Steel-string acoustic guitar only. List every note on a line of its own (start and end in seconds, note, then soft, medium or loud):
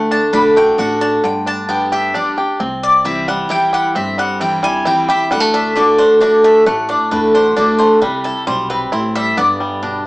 0.00 0.31 D3 medium
0.33 0.55 D3 medium
0.33 0.56 A3 medium
0.33 0.56 D4 loud
0.33 0.55 F#4 loud
0.56 0.78 D4 soft
0.56 0.78 F#4 medium
0.78 1.21 D3 medium
0.78 1.22 A3 loud
0.78 1.22 D4 medium
0.78 1.22 F#4 loud
1.24 2.10 G2 medium
1.69 1.91 G3 loud
1.69 1.91 B3 medium
1.69 1.92 D4 medium
1.69 1.91 G4 loud
1.92 2.14 D4 soft
1.92 2.13 G4 medium
2.15 2.37 G3 medium
2.15 2.37 B3 medium
2.15 2.37 D4 medium
2.15 2.36 G4 loud
2.38 2.60 D4 soft
2.38 2.59 G4 soft
2.60 3.46 C3 medium
3.04 3.27 E3 medium
3.04 3.27 G3 loud
3.04 3.28 C4 loud
3.04 3.26 E4 medium
3.28 3.49 C4 medium
3.28 3.49 E4 medium
3.49 3.93 E3 medium
3.49 3.93 G3 loud
3.49 3.93 C4 loud
3.49 3.93 E4 loud
3.96 4.82 G2 loud
4.41 4.63 E3 medium
4.41 4.63 G3 loud
4.41 4.63 C4 loud
4.41 4.62 E4 loud
4.63 4.85 C4 soft
4.63 4.85 E4 medium
4.85 5.08 E3 medium
4.85 5.08 G3 medium
4.85 5.08 C4 loud
4.85 5.07 E4 loud
5.08 5.31 C4 soft
5.08 5.30 E4 medium
5.32 5.74 D3 medium
5.75 6.19 D3 medium
5.75 6.19 A3 loud
5.75 6.20 D4 loud
5.75 6.20 F#4 loud
6.20 6.64 D3 medium
6.20 6.64 A3 medium
6.20 6.65 D4 medium
6.20 6.65 F#4 loud
6.66 7.53 A2 medium
7.11 7.34 D3 medium
7.11 7.34 A3 medium
7.11 7.34 D4 loud
7.11 7.34 F#4 loud
7.35 7.56 D4 soft
7.35 7.56 F#4 medium
7.56 8.00 D3 medium
7.56 8.00 A3 medium
7.56 8.00 D4 loud
7.56 8.01 F#4 loud
8.02 8.88 C3 loud
8.47 8.90 B2 medium
8.93 9.36 A2 medium
9.38 10.06 G2 loud
9.83 10.06 B2 medium